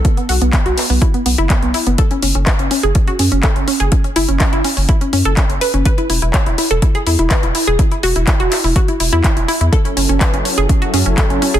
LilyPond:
<<
  \new Staff \with { instrumentName = "Synth pluck" } { \time 4/4 \key fis \minor \tempo 4 = 124 b16 b16 fis'16 b16 b16 fis'16 b16 b16 e'16 b16 b16 e'16 b16 b16 e'16 b16 | a'16 cis'16 cis'16 cis'16 b'16 cis'16 cis'16 gis'16 cis'16 fis'16 cis'16 cis'16 a'16 cis'16 cis'16 gis'16 | cis'16 cis'16 e'16 cis'16 cis'16 e'16 cis'16 cis'16 e'16 cis'16 cis'16 a'16 cis'16 cis'16 b'16 cis'16 | b'16 e'16 e'16 e'16 cis''16 e'16 e'16 a'16 e'16 gis'16 e'16 e'16 b'16 e'16 e'16 gis'16 |
e'16 e'16 fis'16 e'16 e'16 fis'16 e'16 e'16 fis'16 e'16 e'16 e'16 e'16 e'16 e'16 e'16 | a'16 cis'16 cis'16 cis'16 b'16 cis'16 cis'16 gis'16 cis'16 fis'16 cis'16 cis'16 a'16 cis'16 cis'16 gis'16 | }
  \new Staff \with { instrumentName = "Analog synth pad" } { \time 4/4 \key fis \minor r1 | r1 | r1 | r1 |
r1 | <fis cis' e' a'>1 | }
  \new Staff \with { instrumentName = "Sub bass" } { \clef bass \time 4/4 \key fis \minor r8 b,,16 b,,16 r16 b,,16 r16 b,,16 r8 b,,16 fis,,16 r16 b,,16 r16 fis,,16 | r8 fis,,16 fis,,16 r16 fis,,16 r16 fis,,16 r8 fis,16 fis,,16 r16 fis,,16 r16 fis,,16 | r8 fis,,16 fis,,16 r16 fis,,16 r16 fis,,16 r8 fis,16 fis,,16 r16 fis,,16 r16 fis,,16 | r8 e,,16 e,,16 r16 e,,16 r16 e,,16 r8 e,16 e,,16 r16 e,,16 r16 e,,16 |
r8 e,,16 e,,16 r16 e,,16 r16 e,,16 r8 e,,16 e,16 r16 e,,16 r16 e,16 | r8 fis,,16 fis,,16 r16 fis,,16 r16 fis,,16 r8 fis,16 fis,,16 r16 fis,,16 r16 fis,,16 | }
  \new DrumStaff \with { instrumentName = "Drums" } \drummode { \time 4/4 <hh bd>16 hh16 hho16 hh16 <hc hh bd>16 hh16 <hc hho>16 hho16 <hh bd>16 hh16 hho16 hh16 <hc hh bd>16 hh16 hho16 hh16 | <hh bd>16 hh16 hho16 hh16 <hc hh bd>16 hh16 hho16 hh16 <hh bd>16 hh16 hho16 hh16 <hc hh bd>16 hh16 hho16 hh16 | <hh bd>16 hh16 hho16 hh16 <hc hh bd>16 hh16 hho16 hho16 <hh bd>16 hh16 hho16 hh16 <hc hh bd>16 hh16 hho16 hh16 | <hh bd>16 hh16 hho16 hh16 <hc hh bd>16 hh16 hho16 hh16 <hh bd>16 hh16 hho16 hh16 <hc hh bd>16 hh16 hho16 hh16 |
<hh bd>16 hh16 hho16 hh16 <hc hh bd>16 hh16 <hc hho>16 hho16 <hh bd>16 hh16 hho16 hh16 <hc hh bd>16 hh16 hho16 hh16 | <hh bd>16 hh16 hho16 hh16 <hc hh bd>16 hh16 hho16 hh16 <hh bd>16 hh16 hho16 hh16 <hc hh bd>16 hh16 hho16 hh16 | }
>>